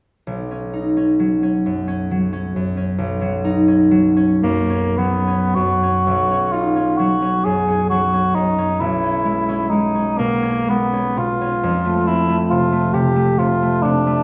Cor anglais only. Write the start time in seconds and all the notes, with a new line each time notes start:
4.43 A#3
4.97 B3
5.55 F#4
6.52 F4
6.98 F#4
7.45 G#4
7.90 F#4
8.35 D#4
8.81 E4
9.70 D#4
10.18 A#3
10.69 B3
11.18 F4
12.07 E4
12.50 F4
12.94 G4
13.38 F4
13.82 D4